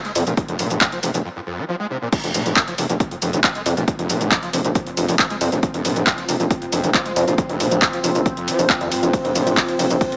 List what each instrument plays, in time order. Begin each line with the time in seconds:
0.05 acid bass G#3, closed hi-hat
0.15 analog synth bass F2, acid bass C3, open hi-hat, shaker
0.27 analog synth bass F1, acid bass A#2, closed hi-hat, shaker
0.37 acid bass F2, kick, closed hi-hat, shaker
0.48 analog synth bass F1, acid bass F2, closed hi-hat
0.59 analog synth bass F1, acid bass A#2, open hi-hat, shaker
0.70 analog synth bass F1, acid bass G#2, closed hi-hat, shaker
0.81 acid bass F2, kick, clap, closed hi-hat, shaker
0.92 acid bass F3, closed hi-hat
1.03 analog synth bass F1, acid bass C3, open hi-hat, shaker
1.14 analog synth bass F1, acid bass A#2, closed hi-hat, shaker
1.25 acid bass F2
1.36 acid bass F2
1.47 acid bass F2
1.58 acid bass F3
1.69 acid bass F3
1.80 acid bass G#3
1.91 acid bass C3
2.02 acid bass A#2
2.12 acid bass F2, synth drone F3 C4, kick, closed hi-hat, crash, shaker
2.24 analog synth bass F1, acid bass F2, closed hi-hat
2.34 analog synth bass F1, acid bass A#2, open hi-hat, shaker
2.46 analog synth bass F1, acid bass G#2, closed hi-hat, shaker
2.56 acid bass F2, kick, clap, closed hi-hat, shaker
2.68 acid bass F3, closed hi-hat
2.78 analog synth bass F1, acid bass C3, open hi-hat, shaker
2.89 analog synth bass F1, acid bass A#2, closed hi-hat, shaker
3.00 acid bass F2, kick, closed hi-hat, shaker
3.11 acid bass F2, closed hi-hat
3.22 analog synth bass F1, acid bass F2, open hi-hat, shaker
3.33 analog synth bass F1, acid bass F3, closed hi-hat, shaker
3.44 acid bass F3, kick, clap, closed hi-hat, shaker
3.55 acid bass G#3, closed hi-hat
3.66 analog synth bass F2, acid bass C3, open hi-hat, shaker
3.77 analog synth bass F1, acid bass A#2, closed hi-hat, shaker
3.88 acid bass F2, kick, closed hi-hat, shaker
3.99 analog synth bass F1, acid bass F2, closed hi-hat
4.09 analog synth bass F1, acid bass A#2, open hi-hat, shaker
4.21 analog synth bass F1, acid bass G#2, closed hi-hat, shaker
4.31 acid bass F2, kick, clap, closed hi-hat, shaker
4.43 acid bass F3, closed hi-hat
4.53 analog synth bass F1, acid bass C3, open hi-hat, shaker
4.65 analog synth bass F1, acid bass A#2, closed hi-hat, shaker
4.75 acid bass F2, kick, closed hi-hat, shaker
4.87 acid bass F2, closed hi-hat
4.97 analog synth bass F1, acid bass F2, open hi-hat, shaker
5.08 analog synth bass F1, acid bass F3, open hi-hat, shaker
5.19 acid bass F3, kick, clap, closed hi-hat, shaker
5.30 acid bass G#3, closed hi-hat
5.41 analog synth bass F2, acid bass C3, open hi-hat, shaker
5.52 analog synth bass F1, acid bass A#2, closed hi-hat, shaker
5.63 acid bass F2, kick, closed hi-hat, shaker
5.74 analog synth bass F1, acid bass F2, closed hi-hat
5.85 analog synth bass F1, acid bass A#2, open hi-hat, shaker
5.96 analog synth bass F1, acid bass G#2, closed hi-hat, shaker
6.07 acid bass F2, kick, clap, closed hi-hat, shaker
6.18 acid bass F3, closed hi-hat
6.29 analog synth bass F1, acid bass C3, open hi-hat, shaker
6.40 analog synth bass F1, acid bass A#2, closed hi-hat, shaker
6.50 acid bass F2, kick, closed hi-hat, shaker
6.62 acid bass F2, closed hi-hat
6.72 analog synth bass F1, acid bass F2, open hi-hat, shaker
6.83 analog synth bass F1, acid bass F3, closed hi-hat, shaker
6.94 acid bass F3, kick, clap, closed hi-hat, shaker
7.05 acid bass G#3, closed hi-hat
7.16 analog synth bass F2, acid bass C3, open hi-hat, shaker
7.27 analog synth bass F1, acid bass A#2, closed hi-hat, shaker
7.38 acid bass F2, kick, closed hi-hat, shaker
7.49 analog synth bass F1, acid bass F2, closed hi-hat
7.60 analog synth bass F1, acid bass A#2, open hi-hat, shaker
7.71 analog synth bass F1, acid bass G#2, closed hi-hat, shaker
7.82 acid bass F2, kick, clap, closed hi-hat, shaker
7.93 acid bass F3, closed hi-hat
8.04 analog synth bass F1, acid bass C3, open hi-hat, shaker
8.15 analog synth bass F1, acid bass A#2, closed hi-hat, shaker
8.26 acid bass F2, kick, closed hi-hat, shaker
8.37 acid bass F2, closed hi-hat
8.48 acid bass F3, open hi-hat, shaker
8.59 analog synth bass F1, acid bass F2, open hi-hat, shaker
8.69 acid bass F2, kick, clap, closed hi-hat, shaker
8.81 acid bass D#2, analog synth bass F2, closed hi-hat
8.91 acid bass G#2, open hi-hat, shaker
9.03 analog synth bass F1, acid bass F2, closed hi-hat, shaker
9.13 acid bass F2, kick, closed hi-hat, ride, shaker
9.24 analog synth bass F1, acid bass F2, closed hi-hat, ride
9.35 analog synth bass F1, acid bass A#2, open hi-hat, ride, shaker
9.46 analog synth bass F1, acid bass G#2, closed hi-hat, ride, shaker
9.57 acid bass F2, kick, clap, closed hi-hat, ride, shaker
9.68 acid bass F3, closed hi-hat, ride
9.79 analog synth bass F1, acid bass C3, open hi-hat, ride, shaker
9.90 analog synth bass F1, acid bass A#2, closed hi-hat, ride, shaker
10.01 acid bass F2, kick, closed hi-hat, ride, shaker
10.12 acid bass F2, closed hi-hat, ride